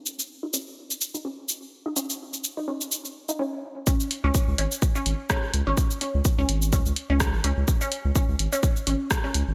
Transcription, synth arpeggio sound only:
0.43 D#4
0.54 C#4
1.14 D#4
1.25 C#4
1.86 D#4
1.96 C#4
2.57 D#4
2.68 C#4
3.29 D#4
3.39 C#4
3.87 C#4
4.24 C#4
4.58 C#4
4.95 C#4
5.30 C#4
5.67 C#4
6.01 C#4
6.38 C#4
6.73 C#4
7.10 C#4
7.44 C#4
7.81 C#4
8.15 C#4
8.53 C#4
8.87 C#4
9.24 C#4

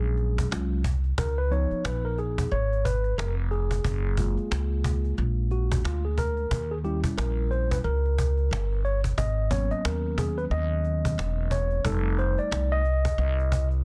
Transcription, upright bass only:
Already playing: A#1
0.51 C2
1.18 C#2
1.71 muted upright bass stroke
1.85 A#1
2.52 G#1
3.18 F1
3.84 F#1
4.38 muted upright bass stroke
4.51 C#2
5.18 A#1
5.85 D2
6.51 D#2
7.04 muted upright bass stroke
7.18 A#1
7.84 C#2
8.51 G1
9.18 G#1
9.71 muted upright bass stroke
9.85 D#2
10.51 D#2
11.18 E1
11.85 F1
12.38 muted upright bass stroke
12.51 C2
13.18 C2

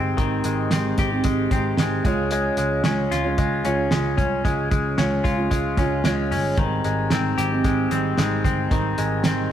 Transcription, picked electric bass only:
Already playing: G1
0.18 G#1
0.44 G#1
0.70 G#1
0.98 G#1
1.25 G#1
1.51 G#1
1.77 G#1
2.04 C#2
2.57 C#2
2.84 C#2
3.11 C#2
3.38 C#2
3.65 C#2
3.92 C#2
4.18 C2
4.44 C#2
4.71 C#2
4.97 C#2
5.24 C#2
5.51 C#2
5.77 C#2
6.05 C#2
6.31 G1
6.58 G#1
6.85 G#1
7.11 G#1
7.38 G#1
7.64 G#1
7.91 G#1
8.18 G#1
8.44 G1
8.71 G#1
8.98 G#1
9.24 G#1

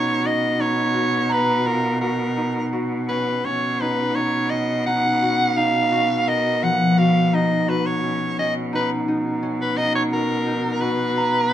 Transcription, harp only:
Already playing: C#4 D#4 F#4
0.24 F#4
0.59 D#4
0.94 F#4
1.29 A#5
1.65 F4
2.01 F#4
2.37 D#4
2.73 F#4
3.09 C#4
3.44 C#4
3.81 D#4
4.16 D#4
4.51 C#4
4.87 D#4
5.22 F#4
5.57 D#4
5.92 F#4
6.27 A#4
6.63 F3
6.97 F#4
7.33 D#4
7.68 F#4
8.03 C#4
8.38 C#4
8.73 D#4
9.08 D#4
9.43 C#4
9.77 D#4
10.13 F#4
10.47 D#4
10.82 F#4
11.17 A#5

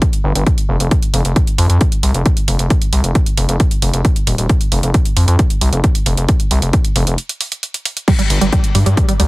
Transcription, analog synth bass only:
0.24 G1
0.35 G1
0.69 F1
0.80 F1
1.14 F1
1.25 F1
1.58 F2
1.70 F2
2.03 C2
2.14 F1
2.48 F1
2.59 F1
2.93 C2
3.04 F1
3.38 F1
3.49 F1
3.82 F1
3.94 F1
4.27 D#1
4.38 D#1
4.72 F1
4.83 F1
5.17 F2
5.28 F2
5.61 C2
5.73 F1
6.06 F1
6.18 F1
6.51 C2
6.62 F1
6.96 F1
7.07 F1
8.30 G1
8.41 G1
8.75 G2
8.86 G2
9.20 D2

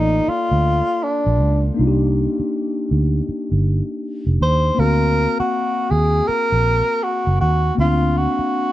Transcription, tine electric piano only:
Already playing: A#3 F4 A4 D5
1.74 A#3 D4
1.79 D#4 F4
1.87 G4
4.75 A#3 C4
4.79 F#4 F5
7.75 A#3 C4
7.79 D4 F5

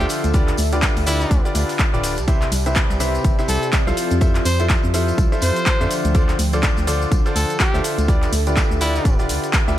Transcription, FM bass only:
0.00 D2
0.24 D2
0.58 D2
0.97 D2
1.31 D2
1.55 D2
1.94 D1
2.18 C2
2.52 C2
2.90 C2
3.24 G1
3.49 C2
3.87 C2
4.11 F2
4.46 F2
4.84 F2
5.18 C2
5.42 F2
5.81 F2
6.05 D2
6.39 D2
6.78 D2
7.12 C2
7.36 D2
7.74 D2
7.98 D2
8.32 D2
8.71 D2
9.05 D1
9.29 D2
9.68 D2

